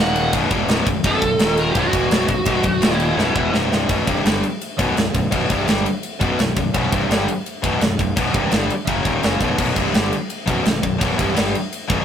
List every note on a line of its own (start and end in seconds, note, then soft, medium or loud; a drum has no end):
0.00 0.30 D#1 loud
0.00 0.33 D#2 medium
0.00 0.33 A#2 loud
0.00 0.33 D#3 loud
0.00 0.32 F#5 medium
0.16 ride medium
0.33 0.50 B0 loud
0.33 0.50 B1 loud
0.33 0.51 F#2 loud
0.33 0.50 B2 loud
0.33 kick loud
0.33 ride loud
0.51 0.67 E1 medium
0.51 0.68 E2 medium
0.51 0.68 B2 medium
0.51 0.69 E3 loud
0.51 kick loud
0.51 ride medium
0.68 0.85 B0 loud
0.68 0.85 B1 loud
0.68 0.86 F#2 medium
0.68 0.87 B2 loud
0.68 snare loud
0.68 ride loud
0.86 1.03 B0 medium
0.86 1.01 B1 medium
0.86 1.01 F#2 medium
0.86 kick medium
0.86 ride medium
1.04 1.21 B0 loud
1.04 1.20 B1 loud
1.04 1.21 F#2 loud
1.04 1.22 B2 loud
1.04 1.60 A4 loud
1.04 kick loud
1.04 ride loud
1.21 1.37 B0 medium
1.21 1.36 B1 medium
1.21 1.36 F#2 medium
1.21 kick medium
1.21 ride medium
1.38 1.72 D#1 medium
1.38 1.75 D#2 loud
1.38 1.75 A#2 loud
1.38 1.75 D#3 loud
1.38 snare loud
1.38 ride loud
1.57 1.68 A#4 loud
1.57 ride medium
1.71 1.92 B1 medium
1.71 1.93 F#2 loud
1.71 1.78 G4 medium
1.71 kick loud
1.71 ride loud
1.76 1.92 B0 loud
1.76 1.93 B2 loud
1.76 2.92 F#4 medium
1.93 2.10 E1 loud
1.93 2.11 E2 medium
1.93 2.11 B2 medium
1.93 2.12 E3 loud
1.93 kick loud
1.93 ride medium
2.11 2.28 B0 loud
2.11 2.29 B1 loud
2.11 2.29 F#2 loud
2.11 2.29 B2 loud
2.11 snare loud
2.11 ride loud
2.28 2.46 B0 medium
2.28 2.44 B1 medium
2.28 2.44 F#2 medium
2.28 kick medium
2.28 ride medium
2.45 2.63 B0 medium
2.45 2.64 B1 medium
2.45 2.64 F#2 medium
2.45 2.64 B2 loud
2.45 kick loud
2.45 ride loud
2.63 2.81 B0 medium
2.63 2.79 B1 medium
2.63 2.79 F#2 medium
2.63 kick loud
2.63 ride medium
2.82 3.16 D#1 loud
2.82 3.16 D#2 medium
2.82 3.16 A#2 loud
2.82 3.17 D#3 loud
2.82 snare loud
2.82 ride loud
2.92 3.51 E4 medium
3.00 ride medium
3.17 3.34 B0 loud
3.17 3.34 B1 medium
3.17 3.34 F#2 loud
3.17 3.33 B2 loud
3.17 snare medium
3.35 3.52 E1 loud
3.35 3.52 E2 medium
3.35 3.52 B2 medium
3.35 3.53 E3 loud
3.35 kick loud
3.52 3.87 C1 loud
3.52 3.88 C2 medium
3.52 3.88 G2 loud
3.52 3.88 C3 loud
3.52 snare medium
3.72 snare medium
3.89 4.06 B0 medium
3.89 4.06 B1 medium
3.89 4.06 F#2 medium
3.89 4.07 B2 loud
3.89 kick loud
3.89 ride loud
4.06 4.24 C1 medium
4.06 4.23 C2 medium
4.06 4.22 G2 loud
4.06 4.24 C3 loud
4.06 kick loud
4.06 ride medium
4.23 4.42 G1 medium
4.23 4.41 G2 medium
4.23 4.41 D3 loud
4.23 4.42 G3 loud
4.23 snare loud
4.23 ride loud
4.43 ride medium
4.61 ride loud
4.78 4.95 B0 loud
4.78 4.96 B1 medium
4.78 4.96 F#2 medium
4.78 4.96 B2 medium
4.78 kick loud
4.78 ride medium
4.96 5.13 B0 medium
4.96 5.11 B1 medium
4.96 5.11 F#2 medium
4.96 snare loud
4.96 ride loud
5.15 5.31 B0 medium
5.15 5.29 B1 medium
5.15 5.29 F#2 medium
5.15 kick medium
5.15 ride medium
5.31 5.48 B0 medium
5.31 5.48 B1 loud
5.31 5.49 F#2 loud
5.31 5.49 B2 loud
5.31 kick loud
5.31 ride loud
5.50 5.66 C1 loud
5.50 5.67 C2 loud
5.50 5.66 G2 loud
5.50 5.67 C3 loud
5.50 kick loud
5.50 ride medium
5.67 5.85 G1 loud
5.67 5.84 G2 loud
5.67 5.85 D3 medium
5.67 5.85 G3 loud
5.67 snare loud
5.67 ride loud
5.86 ride medium
6.03 ride loud
6.20 6.37 B0 medium
6.20 6.38 B1 medium
6.20 6.38 F#2 loud
6.20 6.38 B2 loud
6.20 kick loud
6.20 ride medium
6.39 6.55 B0 medium
6.39 6.54 B1 medium
6.39 6.53 F#2 medium
6.39 snare loud
6.39 ride medium
6.56 6.73 B0 medium
6.56 6.70 B1 medium
6.56 6.70 F#2 medium
6.56 kick medium
6.56 ride medium
6.74 6.91 B0 loud
6.74 6.90 B1 loud
6.74 6.91 F#2 medium
6.74 6.92 B2 loud
6.74 kick loud
6.74 ride loud
6.91 7.09 C1 loud
6.91 7.08 C2 medium
6.91 7.09 G2 loud
6.91 7.09 C3 loud
6.91 kick loud
6.91 ride medium
7.09 7.26 G1 medium
7.09 7.27 G2 medium
7.09 7.27 D3 loud
7.09 7.27 G3 loud
7.09 snare loud
7.09 ride loud
7.28 ride medium
7.46 ride loud
7.63 7.80 B0 medium
7.63 7.80 B1 medium
7.63 7.81 F#2 medium
7.63 7.81 B2 loud
7.63 kick loud
7.63 ride medium
7.81 7.98 B0 medium
7.81 7.95 B1 medium
7.81 7.96 F#2 medium
7.81 snare loud
7.81 ride loud
7.99 8.15 B0 medium
7.99 8.14 B1 medium
7.99 8.14 F#2 medium
7.99 kick medium
7.99 ride medium
8.16 8.33 B0 medium
8.16 8.33 B1 medium
8.16 8.33 F#2 medium
8.16 8.34 B2 loud
8.16 kick loud
8.16 ride loud
8.34 8.51 C1 loud
8.34 8.52 C2 loud
8.34 8.51 G2 medium
8.34 8.52 C3 loud
8.34 kick loud
8.34 ride medium
8.51 8.68 G1 loud
8.51 8.69 G2 loud
8.51 8.70 D3 medium
8.51 8.70 G3 loud
8.51 snare loud
8.51 ride loud
8.70 ride medium
8.87 9.04 F#1 medium
8.87 9.04 F#2 medium
8.87 9.04 C#3 medium
8.87 9.05 F#3 medium
8.87 kick loud
8.87 ride medium
9.04 9.22 D#1 medium
9.04 9.21 D#2 medium
9.04 9.22 A#2 medium
9.04 9.22 D#3 loud
9.04 kick loud
9.04 ride medium
9.21 9.40 F#1 medium
9.21 9.39 F#2 medium
9.21 9.40 C#3 loud
9.21 9.40 F#3 medium
9.21 snare loud
9.21 ride medium
9.39 9.57 B0 loud
9.39 9.57 B1 medium
9.39 9.58 F#2 loud
9.39 9.58 B2 loud
9.39 kick loud
9.39 ride medium
9.58 9.75 B0 medium
9.58 9.75 B1 loud
9.58 9.76 F#2 loud
9.58 9.76 B2 loud
9.58 kick loud
9.58 crash loud
9.76 9.93 C1 loud
9.76 9.93 C2 medium
9.76 9.93 G2 loud
9.76 9.94 C3 loud
9.76 kick loud
9.76 ride medium
9.94 10.11 G1 loud
9.94 10.11 G2 medium
9.94 10.12 D3 medium
9.94 10.12 G3 loud
9.94 snare loud
9.94 ride loud
10.13 ride medium
10.30 ride loud
10.46 10.64 B0 loud
10.46 10.63 B1 loud
10.46 10.63 F#2 loud
10.46 10.65 B2 loud
10.46 kick loud
10.46 ride medium
10.64 10.82 B0 medium
10.64 10.79 B1 medium
10.64 10.79 F#2 medium
10.64 snare loud
10.64 ride loud
10.68 10.81 F#2 medium
10.82 11.00 B0 medium
10.82 10.97 B1 medium
10.82 10.97 F#2 medium
10.82 kick medium
10.82 ride medium
10.98 11.17 B0 loud
10.98 11.15 B1 medium
10.98 11.15 F#2 loud
10.98 11.16 B2 loud
10.98 kick loud
10.98 ride loud
11.16 11.35 C1 loud
11.16 11.34 C2 medium
11.16 11.33 G2 medium
11.16 11.35 C3 loud
11.16 kick loud
11.16 ride medium
11.35 11.54 G1 loud
11.35 11.53 G2 loud
11.35 11.53 D3 medium
11.35 11.53 G3 loud
11.35 snare loud
11.35 ride loud
11.55 ride medium
11.73 ride loud
11.88 12.05 B0 loud
11.88 12.05 B1 medium
11.88 12.05 F#2 medium
11.88 12.05 B2 medium
11.88 kick loud
11.88 ride medium